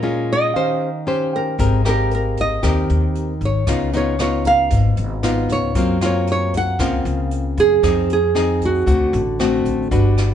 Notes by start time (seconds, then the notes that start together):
Already playing: A#2 A#4
0.03 G#3 C#4 F4
0.33 D#5
0.54 D#3 C#4 G4 C5 F5
1.07 C#4 G4 C5
1.33 A#4 G5
1.59 G#1 G#3 C4 G4 A#4, kick, closed hi-hat
1.85 C4 G4 A#4, cross-stick, closed hi-hat
2.11 A#4, closed hi-hat
2.37 D#5, kick, closed hi-hat
2.63 D#2 D#3 C4 G4 A#4, kick, cross-stick, closed hi-hat
2.89 D#2, closed hi-hat
3.15 closed hi-hat
3.41 G#1, kick, closed hi-hat
3.45 C#5
3.67 C#2 C#3 B3 D#4 F4, kick, cross-stick, closed hi-hat
3.93 B3 D#4 F4 C#5, closed hi-hat
4.19 B3 D#4 F4 C#5, cross-stick, closed hi-hat
4.45 F5 A#5, kick, closed hi-hat
4.70 G#1 G#2, kick, closed hi-hat
4.97 G#1, closed hi-hat
5.23 B3 D#4 F4, cross-stick, closed hi-hat
5.49 C#2 C#5, kick, closed hi-hat
5.75 F#2 F#3 A#3 C4 F4, kick, closed hi-hat
6.01 A#3 C4 F4, cross-stick, closed hi-hat
6.06 C#5
6.27 closed hi-hat
6.32 C#5
6.53 kick, closed hi-hat
6.57 F#5
6.79 C#2 C#3 A#3 C4 F4, kick, cross-stick, closed hi-hat
7.05 C#2, closed hi-hat
7.31 closed hi-hat
7.57 F#2 G#4, kick, closed hi-hat
7.83 F2 F3 C4 D#4 G#4, kick, cross-stick, closed hi-hat
8.10 G#4, closed hi-hat
8.35 C4 D#4 G#4, cross-stick, closed hi-hat
8.61 kick, closed hi-hat
8.65 F#4
8.86 D2 D3 A3 C4 F#4, kick, closed hi-hat
9.13 A1, closed hi-hat
9.40 A3 C4 F#4, cross-stick, closed hi-hat
9.65 A1, kick, closed hi-hat
9.91 G1 G3 D4 F#4 B4, kick, closed hi-hat
10.17 cross-stick, closed hi-hat